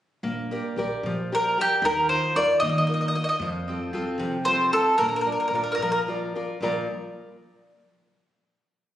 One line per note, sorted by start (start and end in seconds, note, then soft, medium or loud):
0.23 0.58 A#1 medium
0.23 0.76 A#3 medium
0.51 0.76 G4 soft
0.51 0.77 A#4 soft
0.51 0.77 D5 soft
0.76 0.94 A#1 medium
0.76 1.20 G4 soft
0.76 1.21 A#4 soft
0.76 1.21 D5 medium
1.03 1.55 A#2 medium
1.03 1.57 F3 medium
1.32 1.57 G4 soft
1.32 1.57 A#4 soft
1.32 1.57 A#4 medium
1.32 1.58 D5 soft
1.58 1.79 G4 soft
1.58 1.84 G4 medium
1.58 1.79 A#4 soft
1.58 1.80 D5 soft
1.82 2.17 D#2 medium
1.82 2.35 D#3 medium
1.82 2.09 A#4 medium
2.09 2.34 D#4 soft
2.09 2.35 F4 soft
2.09 2.36 A#4 soft
2.09 2.34 C5 medium
2.35 2.53 D#2 medium
2.35 2.78 D#4 soft
2.35 2.79 F4 medium
2.35 2.79 A#4 medium
2.35 2.59 D5 medium
2.60 3.14 D#3 medium
2.60 3.13 A#3 medium
2.60 2.68 D#5 medium
2.69 2.76 D#5 medium
2.78 2.85 D#5 medium
2.87 3.13 D#4 soft
2.87 3.13 F4 soft
2.87 3.13 A#4 soft
2.87 2.93 D#5 medium
2.94 3.00 D#5 soft
3.01 3.07 D#5 soft
3.08 3.14 D#5 medium
3.15 3.36 D#4 soft
3.15 3.36 F4 soft
3.15 3.36 A#4 soft
3.15 3.21 D#5 medium
3.24 3.28 D#5 medium
3.29 3.35 D#5 medium
3.40 3.75 F2 medium
3.40 3.93 F3 medium
3.68 3.92 C4 soft
3.68 3.93 F4 soft
3.68 3.93 A4 soft
3.93 4.10 F2 medium
3.93 4.36 C4 medium
3.93 4.36 F4 soft
3.93 4.37 A4 medium
4.18 4.71 C3 medium
4.18 4.70 F3 medium
4.45 4.71 C4 soft
4.45 4.72 F4 soft
4.45 4.72 A4 soft
4.45 4.73 C5 medium
4.72 4.94 C4 soft
4.72 4.94 F4 soft
4.72 4.97 A4 medium
4.72 4.94 A4 soft
4.98 5.34 A#1 medium
4.98 5.52 A#3 medium
4.98 5.06 A#4 medium
5.09 5.15 A#4 soft
5.16 5.20 A#4 medium
5.21 5.29 A#4 medium
5.26 5.52 F4 soft
5.26 5.53 A#4 soft
5.26 5.54 D5 soft
5.32 5.38 A#4 soft
5.40 5.45 A#4 soft
5.48 5.69 A#1 medium
5.48 5.53 A#4 soft
5.54 5.97 F4 soft
5.54 5.97 A#4 soft
5.54 5.61 A#4 soft
5.54 5.98 D5 medium
5.64 5.68 A#4 soft
5.72 5.74 A#4 soft
5.72 5.81 A#4 medium
5.78 6.31 A#2 medium
5.82 6.34 F3 medium
5.82 5.89 A#4 soft
5.92 5.98 A#4 medium
6.08 6.34 F4 soft
6.08 6.35 A#4 soft
6.08 6.35 D5 soft
6.35 6.56 F4 soft
6.35 6.57 A#4 soft
6.35 6.57 D5 soft
6.61 6.86 A#1 medium
6.61 6.87 A#2 medium
6.61 6.87 F3 soft
6.61 6.87 F4 medium
6.61 6.87 A#4 medium
6.61 6.87 D5 medium
6.61 6.88 A#5 medium